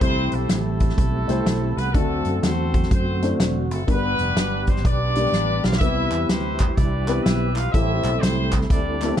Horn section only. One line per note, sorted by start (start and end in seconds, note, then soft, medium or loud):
0.03 0.31 C4 loud
0.03 0.49 E4 medium
0.03 0.95 G4 medium
0.03 0.31 C5 loud
0.33 0.49 A3 medium
0.33 0.49 A4 loud
0.50 1.74 A3 loud
0.50 1.74 E4 medium
0.50 1.74 A4 loud
1.77 1.95 B3 medium
1.77 1.95 B4 medium
1.93 2.41 A3 loud
1.93 2.43 C4 medium
1.93 2.41 F#4 medium
1.93 2.41 A4 loud
2.42 2.91 C4 medium
2.42 2.91 F#4 medium
2.42 2.91 A4 medium
2.42 2.91 C5 loud
2.92 3.35 C4 medium
2.92 3.84 F#4 medium
2.92 3.71 A4 medium
2.92 3.35 C5 medium
3.72 3.87 A3 medium
3.72 3.87 A4 medium
3.90 4.64 B3 loud
3.90 4.82 D4 medium
3.90 4.82 G4 medium
3.90 4.64 B4 loud
4.67 4.85 C4 medium
4.67 4.85 C5 loud
4.85 5.64 D4 loud
4.85 5.78 G4 medium
4.85 5.78 B4 medium
4.85 5.64 D5 loud
5.62 5.80 F4 loud
5.62 5.80 F5 loud
5.78 6.24 E4 loud
5.78 6.29 G4 medium
5.78 6.73 B4 medium
5.78 6.24 E5 loud
6.28 6.77 C4 loud
6.28 7.22 E4 medium
6.28 6.75 G4 medium
6.28 6.77 C5 loud
6.74 7.24 D4 loud
6.74 7.69 G4 medium
6.74 7.69 B4 medium
6.74 7.24 D5 loud
7.22 7.55 E4 loud
7.22 7.55 E5 loud
7.55 7.73 F4 loud
7.55 7.73 F5 loud
7.72 8.21 E4 loud
7.72 8.22 G4 medium
7.72 8.19 C5 loud
7.72 8.21 E5 loud
8.20 8.55 C4 loud
8.20 9.15 E4 medium
8.20 8.56 G4 medium
8.20 8.55 C5 loud
8.70 9.15 D4 loud
8.70 9.20 G4 medium
8.70 9.15 D5 loud